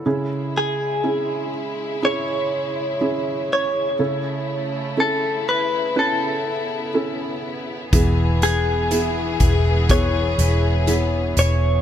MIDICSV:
0, 0, Header, 1, 7, 480
1, 0, Start_track
1, 0, Tempo, 983607
1, 28, Time_signature, 4, 2, 24, 8
1, 5766, End_track
2, 0, Start_track
2, 0, Title_t, "Clean electric guitar"
2, 0, Program_c, 0, 27
2, 281, Note_on_c, 0, 68, 62
2, 975, Note_off_c, 0, 68, 0
2, 1000, Note_on_c, 0, 73, 69
2, 1717, Note_off_c, 0, 73, 0
2, 1723, Note_on_c, 0, 73, 70
2, 2439, Note_off_c, 0, 73, 0
2, 2441, Note_on_c, 0, 69, 64
2, 2676, Note_off_c, 0, 69, 0
2, 2678, Note_on_c, 0, 71, 63
2, 2920, Note_off_c, 0, 71, 0
2, 2923, Note_on_c, 0, 69, 56
2, 3616, Note_off_c, 0, 69, 0
2, 4115, Note_on_c, 0, 68, 76
2, 4835, Note_off_c, 0, 68, 0
2, 4836, Note_on_c, 0, 73, 81
2, 5552, Note_off_c, 0, 73, 0
2, 5558, Note_on_c, 0, 73, 75
2, 5766, Note_off_c, 0, 73, 0
2, 5766, End_track
3, 0, Start_track
3, 0, Title_t, "Felt piano"
3, 0, Program_c, 1, 0
3, 0, Control_c, 1, 64, 127
3, 0, Note_on_c, 1, 69, 44
3, 28, Note_on_c, 1, 49, 43
3, 28, Note_on_c, 1, 61, 60
3, 28, Note_on_c, 1, 64, 53
3, 30, Note_on_c, 1, 68, 60
3, 33, Control_c, 1, 64, 0
3, 106, Control_c, 1, 64, 127
3, 138, Note_off_c, 1, 69, 0
3, 484, Note_off_c, 1, 61, 0
3, 484, Note_off_c, 1, 64, 0
3, 485, Note_off_c, 1, 68, 0
3, 506, Note_on_c, 1, 61, 46
3, 508, Note_on_c, 1, 64, 45
3, 509, Note_on_c, 1, 68, 46
3, 728, Note_off_c, 1, 49, 0
3, 963, Note_off_c, 1, 61, 0
3, 964, Note_off_c, 1, 64, 0
3, 965, Note_off_c, 1, 68, 0
3, 988, Note_on_c, 1, 61, 52
3, 988, Note_on_c, 1, 64, 49
3, 989, Note_on_c, 1, 68, 56
3, 1444, Note_off_c, 1, 61, 0
3, 1444, Note_off_c, 1, 64, 0
3, 1445, Note_off_c, 1, 68, 0
3, 1468, Note_on_c, 1, 61, 48
3, 1468, Note_on_c, 1, 64, 42
3, 1471, Note_on_c, 1, 68, 53
3, 1924, Note_off_c, 1, 61, 0
3, 1924, Note_off_c, 1, 64, 0
3, 1925, Note_off_c, 1, 68, 0
3, 1947, Note_on_c, 1, 61, 47
3, 1948, Note_on_c, 1, 49, 39
3, 1949, Note_on_c, 1, 64, 47
3, 1949, Note_on_c, 1, 69, 55
3, 1954, Control_c, 1, 64, 0
3, 2044, Control_c, 1, 64, 127
3, 2403, Note_off_c, 1, 61, 0
3, 2404, Note_off_c, 1, 64, 0
3, 2404, Note_off_c, 1, 69, 0
3, 2426, Note_on_c, 1, 61, 52
3, 2428, Note_on_c, 1, 64, 42
3, 2429, Note_on_c, 1, 69, 53
3, 2648, Note_off_c, 1, 49, 0
3, 2883, Note_off_c, 1, 61, 0
3, 2884, Note_off_c, 1, 64, 0
3, 2884, Note_off_c, 1, 69, 0
3, 2908, Note_on_c, 1, 61, 51
3, 2909, Note_on_c, 1, 64, 49
3, 2910, Note_on_c, 1, 71, 62
3, 3364, Note_off_c, 1, 61, 0
3, 3364, Note_off_c, 1, 64, 0
3, 3365, Note_off_c, 1, 71, 0
3, 3387, Note_on_c, 1, 61, 48
3, 3388, Note_on_c, 1, 64, 41
3, 3391, Note_on_c, 1, 69, 54
3, 3843, Note_off_c, 1, 61, 0
3, 3844, Note_off_c, 1, 64, 0
3, 3845, Note_off_c, 1, 69, 0
3, 3868, Note_on_c, 1, 59, 60
3, 3870, Note_on_c, 1, 52, 56
3, 3870, Note_on_c, 1, 64, 55
3, 3871, Note_on_c, 1, 68, 69
3, 3875, Control_c, 1, 64, 0
3, 3965, Control_c, 1, 64, 127
3, 4324, Note_off_c, 1, 59, 0
3, 4325, Note_off_c, 1, 64, 0
3, 4325, Note_off_c, 1, 68, 0
3, 4346, Note_on_c, 1, 59, 51
3, 4348, Note_on_c, 1, 64, 50
3, 4349, Note_on_c, 1, 68, 56
3, 4569, Note_off_c, 1, 52, 0
3, 4803, Note_off_c, 1, 59, 0
3, 4804, Note_off_c, 1, 64, 0
3, 4805, Note_off_c, 1, 68, 0
3, 4827, Note_on_c, 1, 59, 57
3, 4830, Note_on_c, 1, 64, 48
3, 4830, Note_on_c, 1, 68, 60
3, 5283, Note_off_c, 1, 59, 0
3, 5285, Note_off_c, 1, 64, 0
3, 5285, Note_off_c, 1, 68, 0
3, 5305, Note_on_c, 1, 59, 49
3, 5306, Note_on_c, 1, 64, 48
3, 5308, Note_on_c, 1, 68, 59
3, 5762, Note_off_c, 1, 59, 0
3, 5763, Note_off_c, 1, 64, 0
3, 5764, Note_off_c, 1, 68, 0
3, 5766, End_track
4, 0, Start_track
4, 0, Title_t, "Steel-string acoustic guitar"
4, 0, Program_c, 2, 25
4, 3870, Note_on_c, 2, 52, 68
4, 4110, Note_on_c, 2, 59, 44
4, 4352, Note_on_c, 2, 64, 49
4, 4590, Note_on_c, 2, 68, 52
4, 4826, Note_off_c, 2, 59, 0
4, 4831, Note_on_c, 2, 59, 53
4, 5065, Note_off_c, 2, 64, 0
4, 5071, Note_on_c, 2, 64, 43
4, 5304, Note_off_c, 2, 59, 0
4, 5310, Note_on_c, 2, 59, 46
4, 5545, Note_off_c, 2, 64, 0
4, 5551, Note_on_c, 2, 64, 45
4, 5766, Note_off_c, 2, 52, 0
4, 5766, Note_off_c, 2, 59, 0
4, 5766, Note_off_c, 2, 64, 0
4, 5766, Note_off_c, 2, 68, 0
4, 5766, End_track
5, 0, Start_track
5, 0, Title_t, "String section"
5, 0, Program_c, 3, 48
5, 31, Note_on_c, 3, 64, 64
5, 32, Note_on_c, 3, 56, 46
5, 34, Note_on_c, 3, 49, 46
5, 1930, Note_off_c, 3, 64, 0
5, 1931, Note_off_c, 3, 56, 0
5, 1948, Note_on_c, 3, 57, 49
5, 1949, Note_on_c, 3, 64, 65
5, 2898, Note_off_c, 3, 57, 0
5, 2909, Note_on_c, 3, 59, 54
5, 3849, Note_off_c, 3, 64, 0
5, 3851, Note_off_c, 3, 49, 0
5, 3867, Note_on_c, 3, 52, 55
5, 3868, Note_on_c, 3, 68, 65
5, 5766, Note_off_c, 3, 52, 0
5, 5766, Note_off_c, 3, 59, 0
5, 5766, Note_off_c, 3, 68, 0
5, 5766, End_track
6, 0, Start_track
6, 0, Title_t, "Fingered electric bass"
6, 0, Program_c, 4, 33
6, 3869, Note_on_c, 4, 28, 82
6, 4569, Note_off_c, 4, 28, 0
6, 4589, Note_on_c, 4, 28, 80
6, 5049, Note_off_c, 4, 28, 0
6, 5067, Note_on_c, 4, 28, 74
6, 5528, Note_off_c, 4, 28, 0
6, 5547, Note_on_c, 4, 28, 70
6, 5766, Note_off_c, 4, 28, 0
6, 5766, End_track
7, 0, Start_track
7, 0, Title_t, "Drums"
7, 3869, Note_on_c, 9, 36, 91
7, 3869, Note_on_c, 9, 42, 75
7, 3918, Note_off_c, 9, 36, 0
7, 3918, Note_off_c, 9, 42, 0
7, 4109, Note_on_c, 9, 42, 52
7, 4158, Note_off_c, 9, 42, 0
7, 4348, Note_on_c, 9, 42, 54
7, 4397, Note_off_c, 9, 42, 0
7, 4587, Note_on_c, 9, 42, 44
7, 4589, Note_on_c, 9, 36, 55
7, 4636, Note_off_c, 9, 42, 0
7, 4638, Note_off_c, 9, 36, 0
7, 4828, Note_on_c, 9, 42, 58
7, 4829, Note_on_c, 9, 36, 75
7, 4877, Note_off_c, 9, 42, 0
7, 4878, Note_off_c, 9, 36, 0
7, 5069, Note_on_c, 9, 42, 53
7, 5118, Note_off_c, 9, 42, 0
7, 5306, Note_on_c, 9, 42, 54
7, 5355, Note_off_c, 9, 42, 0
7, 5548, Note_on_c, 9, 42, 47
7, 5596, Note_off_c, 9, 42, 0
7, 5766, End_track
0, 0, End_of_file